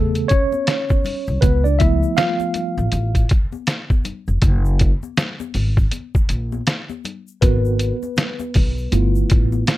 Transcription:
Already playing: upright bass E2, tine electric piano C#3 A3 B3 G#4 A4
0.15 closed hi-hat, shaker
0.28 tine electric piano C#4 C#5, kick, closed hi-hat, shaker
0.52 high conga, shaker
0.67 snare, closed hi-hat, shaker
0.90 kick, high conga, shaker
1.05 open hi-hat, low conga, shaker
1.27 upright bass C2, shaker
1.41 upright bass C#2, tine electric piano B3 B4, kick, closed hi-hat, shaker
1.64 tine electric piano D4 D5, shaker
1.79 tine electric piano F3 A3 B3 E4 E5, kick, closed hi-hat, shaker
2.03 high conga, shaker
2.17 tine electric piano F4 F5, snare, closed hi-hat, low conga, shaker
2.40 high conga, shaker
2.54 closed hi-hat, low conga, shaker
2.78 upright bass A1, shaker
2.92 upright bass A1, closed hi-hat, high conga, shaker
3.15 kick, closed hi-hat, shaker
3.29 kick, closed hi-hat, shaker
3.52 high conga, shaker
3.67 snare, closed hi-hat, shaker
3.90 kick, high conga, shaker
4.05 closed hi-hat, low conga, shaker
4.28 upright bass F1, shaker
4.42 upright bass F#1, kick, closed hi-hat, shaker
4.65 shaker
4.79 kick, closed hi-hat, shaker
5.03 high conga, shaker
5.17 snare, closed hi-hat, low conga, shaker
5.40 high conga, shaker
5.54 upright bass G#1, open hi-hat, low conga, shaker
5.77 kick, shaker
5.91 closed hi-hat, high conga, shaker
6.15 kick, shaker
6.29 upright bass A#1, closed hi-hat, shaker
6.52 high conga, shaker
6.67 snare, closed hi-hat, shaker
6.90 high conga, shaker
7.05 closed hi-hat, low conga, shaker
7.28 shaker
7.41 upright bass G#1, tine electric piano B3 F#4 A#4 B4, kick, closed hi-hat, shaker
7.65 shaker
7.79 closed hi-hat, shaker
8.03 high conga, shaker
8.17 snare, closed hi-hat, low conga, shaker
8.40 high conga, shaker
8.54 upright bass B1, kick, open hi-hat, low conga, shaker
8.78 shaker
8.92 upright bass G1, tine electric piano A3 B3 E4 F4, closed hi-hat, high conga, shaker
9.15 shaker
9.30 upright bass A1, kick, closed hi-hat, shaker
9.52 high conga, shaker
9.67 snare, closed hi-hat, shaker

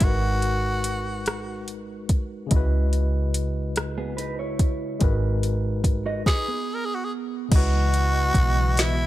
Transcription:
Already playing: tine electric piano G#3
0.00 fingered electric bass G#1, tine electric piano D#4 F#4, tenor saxophone F#4, kick, closed hi-hat
0.05 tine electric piano A#4 B4
0.42 closed hi-hat
0.84 closed hi-hat
1.26 cross-stick, closed hi-hat
1.68 closed hi-hat
2.09 kick, closed hi-hat
2.47 tine electric piano C#3 G#3
2.51 fingered electric bass C#2, tine electric piano E4 D#5, kick, closed hi-hat
2.55 tine electric piano F#4 B4
2.93 closed hi-hat
3.34 closed hi-hat
3.76 cross-stick, closed hi-hat
3.98 clean electric guitar B3 G#4
4.17 clean electric guitar D#4 B4, closed hi-hat
4.39 clean electric guitar E4 C#5
4.59 fingered electric bass G1, kick, closed hi-hat
4.99 fingered electric bass G#1, tine electric piano G#3 D#4 F#4 A#4, kick, closed hi-hat
5.04 tine electric piano B4
5.43 closed hi-hat
5.84 kick, closed hi-hat
6.06 clean electric guitar F#4 D#5
6.26 clean electric guitar D#4 B4, tenor saxophone G#4, kick, snare
6.48 clean electric guitar B3 G#4
6.74 tenor saxophone A#4
6.85 tenor saxophone G#4
6.94 tenor saxophone F#4
7.05 tenor saxophone G#4
7.49 fingered electric bass C#2, tine electric piano C#3 G#3 D#5, analog synth pad E3 B3 F#4 D#5, kick, closed hi-hat, crash
7.54 tine electric piano E4 F#4 B4, tenor saxophone F#4
7.94 closed hi-hat
8.34 fingered electric bass B1, kick, closed hi-hat
8.77 tenor saxophone E4, snare, closed hi-hat

